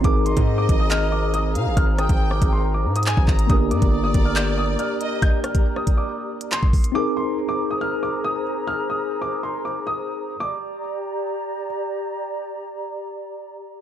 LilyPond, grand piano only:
\new Staff \with { instrumentName = "Grand piano" } { \time 4/4 \key g \phrygian \tempo 4 = 139 d'''8 c'''8. d'''8 ees'''16 f'''8 d'''8 ees'''8 r8 | f'''8 ees'''8. d'''8 c'''8 d'''8 ees'''4~ ees'''16 | ees'''8 d'''8. ees'''8 f'''16 g'''8 ees'''8 f'''8 r8 | g'''8 f'''8. ees'''8 d'''4~ d'''16 c'''4 |
d'''8 c'''8. d'''8 ees'''16 f'''8 d'''8 ees'''8 r8 | f'''8 ees'''8. d'''8 c'''8 d'''8 ees'''4~ ees'''16 | d'''2. r4 | r1 | }